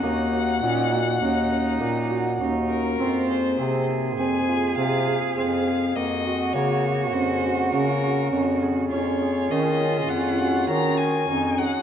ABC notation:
X:1
M:5/4
L:1/8
Q:1/4=101
K:Fphr
V:1 name="Violin"
g8 z B- | B c2 z a2 f2 f2 | e2 d2 c2 B3 z | d2 e2 g2 b a2 g |]
V:2 name="Hammered dulcimer"
B, G E G D B B, G D B | C A C A C F C A C A | B, G B, A D G D B D A | D A D A D G D A D A |]
V:3 name="Cello"
E2 D B, E4 E2 | F2 A8 | G8- G2 | F8 E2 |]
V:4 name="Bass clarinet" clef=bass
E,,2 B,,2 E,,2 B,,2 E,,2 | F,,2 C,2 F,,2 C,2 F,,2 | F,,2 D,2 F,,2 D,2 F,,2 | F,,2 E,2 F,,2 E,2 F,,2 |]